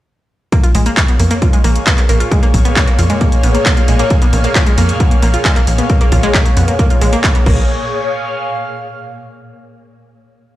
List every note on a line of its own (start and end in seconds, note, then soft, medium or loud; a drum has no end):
0.52 7.73 A#2 medium
0.52 0.58 A#3 loud
0.52 7.73 A#3 medium
0.52 7.45 G#4 medium
0.52 kick loud
0.52 closed hi-hat medium
0.63 0.69 F4 medium
0.63 closed hi-hat medium
0.71 0.89 A#1 loud
0.71 0.78 G#3 loud
0.71 7.47 C#5 medium
0.71 open hi-hat loud
0.86 0.92 A#3 loud
0.86 closed hi-hat medium
0.97 7.46 F5 medium
0.97 kick loud
0.97 clap loud
0.97 closed hi-hat medium
1.08 1.17 B3 medium
1.08 closed hi-hat medium
1.19 1.34 F2 loud
1.19 1.23 A#3 medium
1.19 open hi-hat loud
1.31 1.37 A#3 loud
1.31 closed hi-hat medium
1.42 1.48 F4 medium
1.42 kick loud
1.42 closed hi-hat medium
1.53 1.57 G#3 loud
1.53 closed hi-hat medium
1.64 1.79 A#1 loud
1.64 1.70 A#3 loud
1.64 open hi-hat loud
1.76 closed hi-hat medium
1.87 1.95 B3 medium
1.87 kick loud
1.87 clap loud
1.87 closed hi-hat medium
1.98 2.01 A#3 medium
1.98 clap soft
1.98 closed hi-hat medium
2.09 2.24 A#1 medium
2.09 2.15 A#3 loud
2.09 open hi-hat loud
2.20 2.26 F4 medium
2.20 closed hi-hat medium
2.31 2.35 G#3 loud
2.31 kick loud
2.31 closed hi-hat medium
2.43 2.48 A#3 loud
2.43 closed hi-hat medium
2.54 2.69 A#1 loud
2.54 kick medium
2.54 open hi-hat loud
2.65 2.74 B3 medium
2.65 closed hi-hat medium
2.76 2.80 A#3 medium
2.76 kick loud
2.76 clap loud
2.76 closed hi-hat medium
2.87 2.93 A#3 loud
2.87 closed hi-hat medium
2.99 3.13 F2 loud
2.99 3.04 F4 medium
2.99 open hi-hat loud
3.10 3.13 G#3 loud
3.10 closed hi-hat medium
3.21 3.27 A#3 loud
3.21 kick loud
3.21 closed hi-hat medium
3.32 closed hi-hat medium
3.43 3.58 A#1 loud
3.43 3.52 B3 medium
3.43 open hi-hat loud
3.55 3.58 A#3 medium
3.55 closed hi-hat medium
3.66 3.72 A#3 loud
3.66 kick loud
3.66 clap loud
3.66 closed hi-hat medium
3.77 3.83 F4 medium
3.77 closed hi-hat medium
3.88 4.03 A#1 medium
3.88 3.92 G#3 loud
3.88 open hi-hat loud
3.99 4.05 A#3 loud
3.99 closed hi-hat medium
4.10 kick loud
4.10 closed hi-hat medium
4.22 4.31 B3 medium
4.22 closed hi-hat medium
4.33 4.48 A#1 loud
4.33 4.36 A#3 medium
4.33 open hi-hat loud
4.44 4.50 A#3 loud
4.44 closed hi-hat medium
4.55 4.61 F4 medium
4.55 kick loud
4.55 clap loud
4.55 closed hi-hat medium
4.67 4.70 G#3 loud
4.67 closed hi-hat medium
4.78 4.92 F2 loud
4.78 4.84 A#3 loud
4.78 open hi-hat loud
4.89 closed hi-hat medium
5.00 5.09 B3 medium
5.00 kick loud
5.00 closed hi-hat medium
5.11 5.15 A#3 medium
5.11 closed hi-hat medium
5.22 5.37 A#1 loud
5.22 5.28 A#3 loud
5.22 open hi-hat loud
5.34 5.39 F4 medium
5.34 closed hi-hat medium
5.45 5.48 G#3 loud
5.45 kick loud
5.45 clap loud
5.45 closed hi-hat medium
5.56 5.62 A#3 loud
5.56 clap soft
5.56 closed hi-hat medium
5.67 5.82 A#1 medium
5.67 open hi-hat loud
5.78 5.87 B3 medium
5.78 closed hi-hat medium
5.90 5.93 A#3 medium
5.90 kick loud
5.90 closed hi-hat medium
6.01 6.07 A#3 loud
6.01 closed hi-hat medium
6.12 6.27 A#1 loud
6.12 6.18 F4 medium
6.12 kick medium
6.12 open hi-hat loud
6.23 6.27 G#3 loud
6.23 closed hi-hat medium
6.34 6.40 A#3 loud
6.34 kick loud
6.34 clap loud
6.34 closed hi-hat medium
6.46 closed hi-hat medium
6.57 6.71 F2 loud
6.57 6.66 B3 medium
6.57 open hi-hat loud
6.68 6.71 A#3 medium
6.68 closed hi-hat medium
6.79 6.85 A#3 loud
6.79 kick loud
6.79 closed hi-hat medium
6.90 6.96 F4 medium
6.90 closed hi-hat medium
7.01 7.16 A#1 loud
7.01 7.05 G#3 loud
7.01 open hi-hat loud
7.13 7.19 A#3 loud
7.13 closed hi-hat medium
7.24 kick loud
7.24 clap loud
7.24 closed hi-hat medium
7.35 7.44 B3 medium
7.35 closed hi-hat medium
7.46 7.67 A#1 loud
7.46 7.67 A#3 medium
7.46 9.21 G#4 medium
7.46 kick loud
7.46 crash medium
7.53 9.21 C#5 medium
7.82 9.44 F5 medium